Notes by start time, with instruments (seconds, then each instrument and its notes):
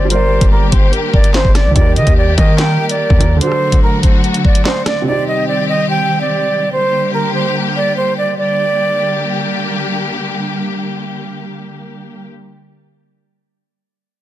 Already playing: 808-style bass G1, grand piano C3 C4 D#4 G4, string section G3
0.05 grand piano G3 G4
0.10 string section D3 A#3 G4, soft synth lead A#4, grand piano A#4, flute C5, closed hi-hat
0.15 grand piano D5
0.41 808-style bass G1, kick, closed hi-hat
0.51 flute A#4, soft synth lead D5
0.72 808-style bass G1, soft synth lead C5, flute C5, kick, closed hi-hat
0.92 soft synth lead A#4, closed hi-hat
1.14 808-style bass G1, flute D5, kick
1.24 closed hi-hat
1.34 flute C5, soft synth lead C5, snare, clap
1.45 808-style bass G1, kick
1.55 soft synth lead D5, flute D5, cross-stick, snare, closed hi-hat
1.65 808-style bass D2
1.71 grand piano D#3 D#4
1.75 808-style bass D#2, string section D#3 G3 A#3 G4, soft synth lead G4, grand piano G4, flute D5, kick, closed hi-hat
1.81 grand piano A#4
1.96 808-style bass D#3, flute D#5, closed hi-hat
2.07 808-style bass D#2, kick, closed hi-hat
2.17 flute D5
2.37 808-style bass D#3, soft synth lead A#4, flute D#5, kick, closed hi-hat
2.58 flute G5, snare, clap, closed hi-hat
2.89 flute D5, closed hi-hat
3.10 808-style bass D#2, kick
3.18 808-style bass D#2, grand piano D#3 D#4 G4, closed hi-hat
3.23 grand piano A#4
3.36 grand piano D3 D4
3.41 string section D3 F#3 A3 F#4, grand piano F#4, flute C5, closed hi-hat
3.47 grand piano A4
3.52 cross-stick
3.72 kick, closed hi-hat
3.83 flute A#4
4.03 flute C5, kick, closed hi-hat
4.24 closed hi-hat
4.34 closed hi-hat
4.45 flute D5, kick
4.55 closed hi-hat
4.65 flute C5, grand piano D5, snare, clap
4.86 flute D5, cross-stick, snare, closed hi-hat
5.02 grand piano C3 C4
5.07 string section D#3 G3 C4 G4, grand piano D#4, flute D5
5.12 grand piano G4
5.28 flute D#5
5.48 flute D5
5.69 flute D#5
5.90 flute G5
6.21 flute D5
6.72 string section D3 A#3 G4, flute C5
7.14 flute A#4
7.35 flute C5
7.76 flute D5
7.97 flute C5
8.17 flute D5
8.38 string section D3 G3 A#3 G4, flute D5